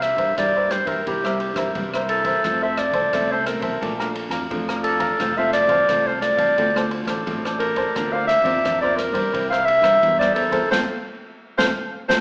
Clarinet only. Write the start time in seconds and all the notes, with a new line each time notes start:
0.03 E5
0.38 D5
0.72 C5
0.88 A#4
1.07 G4
2.09 A4
2.63 E5
2.78 D5
3.32 C5
3.47 A#4
4.83 A4
5.38 E5
5.53 D5
6.07 C5
6.22 D5
7.59 A#4
8.12 F5
8.27 E5
8.81 D5
8.96 A#4
9.50 F5
9.65 E5
10.19 D5
10.34 A4
10.71 C5
11.58 C5
12.09 C5